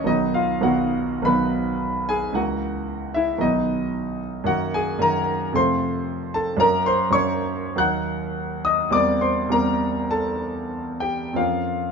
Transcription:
0.04 0.59 B1 medium
0.04 0.60 D#3 soft
0.04 0.61 F#3 soft
0.04 0.62 B3 soft
0.04 0.34 D#4 medium
0.04 0.35 D#5 medium
0.34 0.62 F4 medium
0.34 0.64 F5 medium
0.61 1.21 B1 medium
0.61 1.22 D#3 soft
0.61 1.23 F#3 soft
0.61 1.24 B3 soft
0.61 1.23 F#4 medium
0.61 1.26 F#5 medium
1.22 2.31 B1 medium
1.22 2.32 D#3 soft
1.22 2.32 F#3 soft
1.22 2.33 B3 soft
1.22 2.06 B4 medium
1.22 2.09 B5 medium
2.09 2.35 G#4 medium
2.09 2.36 G#5 medium
2.33 3.36 C#2 medium
2.33 3.37 E3 soft
2.33 3.37 A#3 soft
2.33 3.14 F#5 medium
2.37 3.11 F#4 medium
3.14 3.40 E4 medium
3.14 3.41 E5 medium
3.38 4.43 B1 medium
3.38 4.43 D#3 soft
3.38 4.44 F#3 soft
3.38 4.44 B3 soft
3.38 4.17 D#4 medium
3.38 4.21 D#5 medium
4.44 4.98 F#2 medium
4.44 4.99 D#3 soft
4.44 4.99 A#3 medium
4.44 4.73 F#4 medium
4.44 4.74 F#5 medium
4.74 5.00 G#4 medium
4.74 5.02 G#5 medium
4.99 5.52 F#2 medium
4.99 5.53 D#3 soft
4.99 5.53 A#3 soft
4.99 5.52 A#4 medium
4.99 5.55 A#5 medium
5.53 6.56 F2 medium
5.53 6.57 C3 soft
5.53 6.57 A3 soft
5.53 6.57 F4 medium
5.53 6.31 C5 medium
5.53 6.34 C6 loud
6.34 6.59 A4 medium
6.34 6.60 A5 medium
6.57 7.09 F#2 medium
6.57 7.09 F#3 soft
6.57 7.10 A#3 soft
6.57 7.12 C#4 medium
6.57 6.85 A#4 medium
6.57 6.87 A#5 loud
6.86 7.13 C5 medium
6.86 7.14 C6 medium
7.10 7.75 F#2 medium
7.10 7.75 F#3 soft
7.10 7.76 A#3 soft
7.10 7.76 C#4 soft
7.10 7.75 C#5 medium
7.10 7.78 C#6 loud
7.76 8.89 D#2 medium
7.76 8.90 F#3 soft
7.76 8.90 A#3 medium
7.76 8.91 D#4 medium
7.76 8.62 F#5 medium
7.76 8.66 F#6 loud
8.65 8.92 D#5 medium
8.65 8.94 D#6 medium
8.90 9.47 E2 medium
8.90 9.48 G3 soft
8.90 9.49 A#3 medium
8.90 9.50 C4 medium
8.90 9.22 D6 loud
8.95 9.21 D5 medium
9.21 9.50 C5 medium
9.21 9.51 C6 medium
9.49 11.31 E2 medium
9.49 11.32 G3 soft
9.49 11.32 A#3 soft
9.49 11.32 C4 soft
9.49 10.11 A#5 medium
9.53 10.08 A#4 medium
10.11 10.98 A4 medium
10.11 11.02 A5 medium
11.00 11.34 G4 medium
11.00 11.36 G5 medium
11.33 11.92 F2 medium
11.33 11.92 F3 soft
11.33 11.92 A#3 soft
11.33 11.92 C#4 soft
11.33 11.92 F5 medium
11.38 11.92 F4 medium

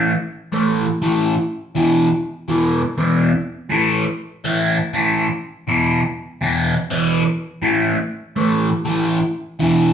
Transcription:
0.00 0.10 A2 medium
0.00 0.10 E3 loud
0.00 0.11 A3 loud
0.52 0.85 A2 medium
0.52 0.84 E3 medium
0.52 0.84 A3 loud
1.02 1.34 A2 medium
1.02 1.34 E3 medium
1.02 1.33 A3 medium
1.75 2.07 E2 medium
1.75 2.07 B2 medium
1.75 2.07 E3 medium
2.48 2.81 E2 medium
2.48 2.80 B2 medium
2.48 2.80 E3 loud
2.98 3.30 E2 medium
2.98 3.30 B2 medium
2.98 3.29 E3 medium
3.70 4.02 A2 medium
3.70 4.03 E3 medium
3.70 4.03 A3 loud
4.44 4.77 A2 medium
4.44 4.77 E3 medium
4.44 4.76 A3 medium
4.93 5.26 A2 medium
4.93 5.26 E3 medium
4.93 5.25 A3 loud
5.67 5.99 E2 medium
5.67 6.00 B2 medium
5.67 6.00 E3 medium
6.41 6.73 E2 medium
6.41 6.73 B2 medium
6.41 6.73 E3 medium
6.90 7.23 E2 medium
6.90 7.22 B2 medium
6.90 7.22 E3 medium
7.62 7.95 A2 medium
7.62 7.95 E3 medium
7.62 7.96 A3 loud
8.36 8.69 A2 medium
8.36 8.69 E3 medium
8.36 8.68 A3 loud
8.85 9.18 A2 medium
8.85 9.18 E3 medium
8.85 9.17 A3 medium
9.59 9.91 E2 medium
9.59 9.92 B2 medium
9.59 9.92 E3 loud

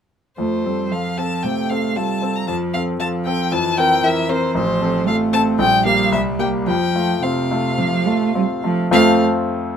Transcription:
0.38 1.41 F2 soft
0.38 0.67 A3 soft
0.38 0.94 C5 medium
0.65 0.93 G3 soft
0.65 0.89 C4 soft
0.65 0.89 A4 soft
0.92 1.46 F3 soft
0.92 1.15 F4 soft
0.92 1.16 A4 soft
0.92 1.19 F5 medium
1.18 1.42 C4 soft
1.18 1.42 A4 soft
1.18 1.44 A5 medium
1.43 1.86 C3 soft
1.43 1.98 A3 soft
1.43 1.71 G5 medium
1.70 1.94 C4 soft
1.70 1.94 A4 soft
1.70 1.98 F5 medium
1.96 2.48 G3 soft
1.96 2.20 F4 soft
1.96 2.20 A4 soft
1.96 2.37 A5 medium
2.22 2.46 C4 soft
2.22 2.46 A4 soft
2.36 2.47 A#5 medium
2.48 3.49 F2 medium
2.48 3.00 F3 soft
2.48 2.56 A5 medium
2.74 2.98 C4 soft
2.74 2.98 A4 soft
2.74 2.82 F5 medium
3.00 3.54 F3 soft
3.00 3.24 F4 soft
3.00 3.24 A4 soft
3.00 3.08 A5 medium
3.26 3.50 C4 soft
3.26 3.50 A4 soft
3.26 3.53 G5 medium
3.52 4.52 F2 medium
3.52 4.03 E3 medium
3.52 3.79 A5 medium
3.77 4.01 C4 soft
3.77 4.01 A#4 soft
3.77 4.05 G5 medium
4.03 4.57 E3 medium
4.03 4.27 E4 soft
4.03 4.27 A#4 soft
4.03 4.31 E5 medium
4.29 4.53 C4 soft
4.29 4.53 A#4 soft
4.29 4.55 C5 medium
4.55 5.56 A1 medium
4.55 5.09 F3 medium
4.55 5.06 C5 medium
4.81 5.05 C4 soft
4.81 5.05 A4 soft
5.07 5.61 A3 medium
5.07 5.30 F4 soft
5.07 5.31 A4 medium
5.07 5.15 F5 medium
5.33 5.57 C4 medium
5.33 5.57 A4 medium
5.33 5.41 A5 medium
5.59 6.11 A#1 medium
5.59 6.69 G3 medium
5.59 5.85 G5 medium
5.85 6.10 A#3 soft
5.85 6.10 G4 medium
5.85 6.12 F5 medium
6.12 6.66 C2 medium
6.12 6.21 E5 medium
6.39 6.64 A#3 soft
6.39 6.65 G4 soft
6.39 6.47 G5 medium
6.67 7.76 F2 medium
6.67 7.18 F3 medium
6.67 7.24 G5 medium
6.95 7.21 A3 soft
6.95 7.21 F4 soft
7.23 7.80 C3 medium
7.23 7.48 C4 soft
7.23 7.49 F4 soft
7.23 8.64 F5 medium
7.51 7.77 A3 soft
7.51 7.77 F4 soft
7.78 8.24 C3 soft
7.78 8.08 F3 medium
8.07 8.33 A3 soft
8.07 8.35 A3 medium
8.07 8.33 F4 soft
8.35 8.43 G3 medium
8.35 8.61 C4 soft
8.35 8.61 F4 soft
8.64 8.92 F3 medium
8.64 8.89 A3 soft
8.64 8.89 F4 soft
8.91 9.22 F2 medium
8.91 9.22 F3 medium
8.91 9.22 A3 medium
8.91 9.23 A3 medium
8.91 9.22 C4 medium
8.91 9.22 F4 medium
8.91 9.22 C5 medium
8.91 9.23 F5 medium

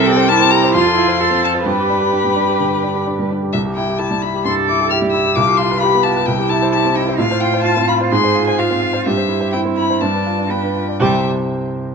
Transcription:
0.00 0.71 C2 medium
0.00 0.31 C4 medium
0.00 0.29 A4 medium
0.00 0.12 A#4 medium
0.05 0.24 G4 medium
0.05 0.30 G5 medium
0.16 0.35 C5 medium
0.27 0.76 E4 medium
0.27 0.73 G4 medium
0.27 0.46 A#4 medium
0.27 0.52 A5 loud
0.40 0.58 C4 medium
0.51 0.69 G4 soft
0.51 0.74 A#5 medium
0.64 0.74 C5 soft
0.73 1.64 F2 medium
0.73 0.95 F4 medium
0.73 1.22 F4 medium
0.73 1.42 C6 medium
0.85 1.03 A4 soft
0.96 1.20 E4 medium
0.96 1.15 F4 medium
1.08 1.26 C5 soft
1.19 1.67 F4 medium
1.19 1.38 A4 soft
1.19 1.67 A4 medium
1.31 1.50 C4 soft
1.42 1.61 F4 soft
1.42 1.52 A5 medium
1.54 1.66 C5 soft
1.65 2.56 G2 soft
1.65 3.33 G4 soft
1.65 3.27 B4 medium
1.65 3.04 B5 medium
1.77 1.96 G4 soft
1.89 2.08 D4 soft
2.00 2.19 G4 soft
2.12 2.31 D4 soft
2.24 2.43 G3 soft
2.36 2.55 D4 soft
2.48 2.67 G4 soft
2.60 2.79 D3 soft
2.83 3.02 D4 soft
2.95 3.13 G4 soft
3.07 3.25 D4 soft
3.19 3.37 G3 soft
3.31 3.49 D4 soft
3.43 3.54 G4 soft
3.53 4.43 C2 soft
3.53 3.61 E5 medium
3.65 3.84 G4 soft
3.76 3.95 E4 soft
3.76 4.00 G5 medium
3.88 4.07 G4 soft
3.98 4.18 E4 soft
3.98 4.33 G4 soft
3.98 4.24 A5 medium
4.11 4.29 G3 soft
4.22 4.41 E4 soft
4.22 4.45 B5 medium
4.34 4.52 G4 soft
4.45 4.63 G2 soft
4.45 4.93 A4 medium
4.45 4.53 C6 medium
4.57 4.75 G4 soft
4.68 4.87 E4 soft
4.68 4.90 D6 medium
4.80 4.98 G4 soft
4.90 5.09 E4 soft
4.90 5.25 G4 soft
4.90 5.36 G4 medium
4.90 4.98 F6 medium
5.02 5.20 G3 soft
5.12 5.32 E4 soft
5.12 5.37 E6 medium
5.25 5.36 G4 soft
5.35 6.25 C2 medium
5.35 5.84 F4 medium
5.35 5.59 D6 medium
5.48 5.66 G4 soft
5.57 5.78 F4 soft
5.57 5.81 C6 medium
5.71 5.89 B4 soft
5.80 6.16 G4 soft
5.80 6.01 G4 soft
5.80 6.28 G4 medium
5.80 6.05 B5 medium
5.95 6.12 B3 soft
6.03 6.23 F4 soft
6.03 6.27 A5 medium
6.16 6.28 B4 soft
6.26 7.16 C2 medium
6.26 7.21 E4 medium
6.26 6.51 G5 medium
6.39 6.57 G4 soft
6.49 6.69 E4 soft
6.49 6.72 A5 medium
6.62 6.80 C5 soft
6.72 7.07 E4 medium
6.72 6.92 G4 soft
6.72 6.97 A5 medium
6.85 7.03 C4 soft
6.96 7.15 E4 soft
6.96 7.18 G5 medium
7.08 7.19 C5 soft
7.18 8.09 A2 medium
7.18 8.13 F4 medium
7.18 7.42 F5 medium
7.31 7.49 C5 soft
7.41 7.61 F4 soft
7.41 7.63 G5 medium
7.53 7.72 C5 medium
7.64 7.84 F4 soft
7.64 8.00 F4 medium
7.64 7.87 A5 medium
7.76 7.95 C4 soft
7.88 8.07 F4 soft
7.88 7.97 B5 medium
8.00 8.12 C5 soft
8.12 9.03 G#2 medium
8.12 8.61 G#4 medium
8.12 8.47 C6 medium
8.24 8.42 C5 soft
8.35 8.54 F4 soft
8.47 8.66 C5 soft
8.47 8.60 G#5 medium
8.58 8.93 F4 soft
8.58 8.77 F4 soft
8.58 9.08 F4 medium
8.58 9.05 F5 medium
8.71 8.89 C4 soft
8.82 9.01 F4 soft
8.93 9.05 C5 soft
9.06 9.99 G2 soft
9.06 9.55 G4 medium
9.06 9.52 E5 medium
9.17 9.36 C5 soft
9.29 9.48 E4 soft
9.40 9.60 C5 soft
9.52 9.89 C4 soft
9.52 10.00 E4 medium
9.52 9.72 E4 soft
9.52 9.60 G5 medium
9.65 9.84 C4 soft
9.77 9.97 E4 soft
9.77 10.03 B5 medium
9.90 10.02 C5 soft
10.01 10.97 G2 soft
10.01 10.51 D4 soft
10.01 10.52 A5 medium
10.14 10.33 B4 soft
10.26 10.45 F4 soft
10.38 10.58 D5 soft
10.50 10.87 B3 soft
10.50 10.75 B4 soft
10.50 10.70 B4 soft
10.50 10.99 G5 soft
10.63 10.83 D4 soft
10.76 10.95 F4 soft
10.89 11.00 D5 soft
11.00 11.28 C2 soft
11.00 11.27 C3 soft
11.00 11.28 G3 medium
11.00 11.28 C4 soft
11.00 11.27 G4 medium
11.00 11.28 G4 soft
11.00 11.27 C5 soft
11.00 11.28 E5 medium
11.00 11.28 G5 soft

